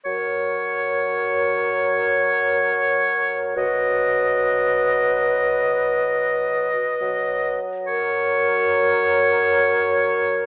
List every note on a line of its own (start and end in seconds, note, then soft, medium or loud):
0.05 3.52 F#3 soft
0.05 3.57 A#4 soft
0.05 3.52 C#5 soft
3.56 6.70 F#3 soft
3.56 7.60 B4 soft
3.56 7.57 D#5 soft
7.01 10.46 F#3 soft
7.87 10.46 A#4 soft
7.87 10.46 C#5 soft